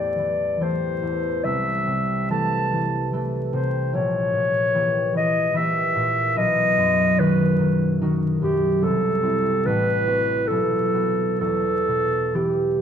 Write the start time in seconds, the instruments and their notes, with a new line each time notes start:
Already playing: harp A1 E2 E3 A3 G4, clarinet D5
0.18 harp E3
0.60 harp E3 A3 G4, clarinet C5
1.02 harp E2
1.44 harp C2, clarinet E5
1.87 harp C3
2.30 harp E3 A3 A4, clarinet A5
2.73 harp E3
3.13 harp E3 A3 A4
3.52 harp C3, clarinet C5
3.93 harp A#1, clarinet C#5
4.33 harp A#2
4.74 harp E3 A#3 G4
5.14 harp E3, clarinet D#5
5.53 harp E3 A#3, clarinet E5
5.58 harp G4
5.95 harp A#2
6.36 harp B1, clarinet D#5
6.78 harp F#2
7.18 harp D#3 D#4 F#4, clarinet B4
7.59 harp D#3
8.01 harp D#3 D#4 F#4
8.42 harp F#2, clarinet G4
8.82 harp C2, clarinet A4
9.22 harp C4 E4
9.66 harp A1, clarinet B4
10.07 harp C4 F#4
10.47 harp B1, clarinet A4
10.94 harp B3 F#4
11.40 harp E2, clarinet A4
11.88 harp B2
12.34 harp E3 B3 G4, clarinet G4